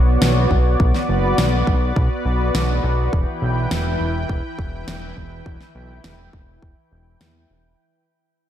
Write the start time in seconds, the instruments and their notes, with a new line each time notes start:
Already playing: analog synth bass B1, analog synth pad B3 F#4 C#5 D5
0.22 analog synth bass B1, snare
0.51 analog synth bass B1, kick
0.80 analog synth bass B1, analog synth pad B4, kick
0.95 snare
1.09 analog synth bass F#1
1.38 analog synth bass B1, snare
1.67 analog synth bass B1, kick
1.96 analog synth bass B1, kick
2.25 analog synth bass B1
2.55 analog synth bass B1, snare
2.84 analog synth bass B1
3.13 analog synth bass E1, analog synth pad E3 E4 G5, kick
3.42 analog synth bass B1
3.71 analog synth bass E1, snare
4.00 analog synth bass E1
4.29 analog synth bass E1, kick
4.59 analog synth bass E1, kick
4.88 analog synth bass E1, snare
5.17 analog synth bass E1, kick
5.46 analog synth bass E1, kick
5.61 snare
5.75 analog synth bass B1
6.04 analog synth bass E1, snare
6.33 analog synth bass E1, kick
6.62 analog synth bass E1, kick
6.92 analog synth bass E1
7.21 analog synth bass E2, snare
7.50 analog synth bass E1